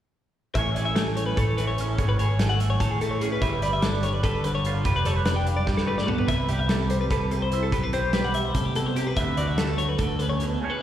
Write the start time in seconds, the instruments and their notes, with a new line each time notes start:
0.55 picked electric bass A1, clean electric guitar A2 A3 C#4 G#4 C#5 E5, kick, closed hi-hat
0.75 clean electric guitar G#4 D5, closed hi-hat
0.85 clean electric guitar E5
0.95 clean electric guitar A3 A4, snare, closed hi-hat
1.17 clean electric guitar C#5, closed hi-hat
1.26 clean electric guitar B4
1.37 picked electric bass A1, clean electric guitar A4 C#5, kick, closed hi-hat
1.57 clean electric guitar E3 B4, closed hi-hat
1.67 clean electric guitar C#5
1.78 clean electric guitar C#4, closed hi-hat
1.88 clean electric guitar A4
1.98 picked electric bass G#1, clean electric guitar A2 G#4 C#5, kick, closed hi-hat
2.09 clean electric guitar B4
2.19 clean electric guitar G#4 C#5, closed hi-hat
2.39 clean electric guitar A3 A4, snare, closed hi-hat
2.49 clean electric guitar F#5
2.60 clean electric guitar E5, closed hi-hat
2.70 clean electric guitar C#5
2.80 picked electric bass A2, clean electric guitar A4 C#5, kick, closed hi-hat
2.91 clean electric guitar G#4
3.01 clean electric guitar E3 A4, closed hi-hat
3.11 clean electric guitar C#5
3.21 clean electric guitar C#4 G#4, closed hi-hat
3.32 clean electric guitar B4
3.41 picked electric bass G1, clean electric guitar G3 B4 E5, kick, closed hi-hat
3.62 clean electric guitar B4 D5, closed hi-hat
3.73 clean electric guitar E5
3.82 clean electric guitar D4 A4, snare, closed hi-hat
4.03 clean electric guitar C#5, closed hi-hat
4.14 clean electric guitar B4
4.23 picked electric bass G1, clean electric guitar A4 B4, kick, closed hi-hat
4.44 clean electric guitar D3 B4, closed hi-hat
4.55 clean electric guitar C#5
4.65 clean electric guitar F4, closed hi-hat
4.75 clean electric guitar A4
4.85 picked electric bass F1, clean electric guitar G3 G4 B4, kick, closed hi-hat
4.96 clean electric guitar B4
5.05 clean electric guitar A4 C#5, closed hi-hat
5.16 clean electric guitar B4
5.25 clean electric guitar D4 B4, snare, closed hi-hat
5.36 clean electric guitar G5
5.47 clean electric guitar F5, closed hi-hat
5.57 clean electric guitar D5
5.67 picked electric bass G2, clean electric guitar G3 B4, kick, snare
5.77 clean electric guitar A4, snare
5.87 clean electric guitar A3 B4
5.98 clean electric guitar D5, snare
6.07 clean electric guitar B3 A4, floor tom
6.18 clean electric guitar B4, floor tom
6.27 picked electric bass C2, clean electric guitar C3 B4 E5, kick, closed hi-hat
6.49 clean electric guitar G4 D5, closed hi-hat
6.59 clean electric guitar E5
6.68 clean electric guitar G3 A4, snare, closed hi-hat
6.90 clean electric guitar C5, closed hi-hat
7.01 clean electric guitar B4
7.10 picked electric bass C2, clean electric guitar A4 B4, kick, snare, closed hi-hat
7.31 clean electric guitar C3 B4, closed hi-hat
7.42 clean electric guitar C5
7.52 clean electric guitar E4, closed hi-hat
7.63 clean electric guitar A4
7.72 picked electric bass B1, clean electric guitar G4 B4, kick, closed hi-hat
7.83 clean electric guitar B4
7.93 clean electric guitar G4 C5, closed hi-hat
8.13 clean electric guitar G3 B4, snare, closed hi-hat
8.24 clean electric guitar F#5
8.34 clean electric guitar E5, closed hi-hat
8.45 clean electric guitar C5
8.54 clean electric guitar A2 A4, picked electric bass C3, kick, closed hi-hat
8.65 clean electric guitar G4
8.75 clean electric guitar B2 A4, closed hi-hat
8.86 clean electric guitar C5
8.96 clean electric guitar C3 G4, closed hi-hat
9.07 clean electric guitar B4
9.16 picked electric bass D2, clean electric guitar D3 B4 E5, kick, closed hi-hat
9.37 clean electric guitar F#4 D5, closed hi-hat
9.47 clean electric guitar E5
9.58 clean electric guitar A3 A4, snare, closed hi-hat
9.78 clean electric guitar C#5, closed hi-hat
9.89 clean electric guitar B4
9.98 picked electric bass D2, clean electric guitar D3 A4, kick, closed hi-hat
10.19 clean electric guitar C#3 B4, closed hi-hat
10.30 clean electric guitar C#5
10.40 clean electric guitar B2, closed hi-hat
10.50 clean electric guitar A4
10.60 clean electric guitar A2 A3 C#4 G#4
10.64 clean electric guitar G#4 C#5
10.70 clean electric guitar B4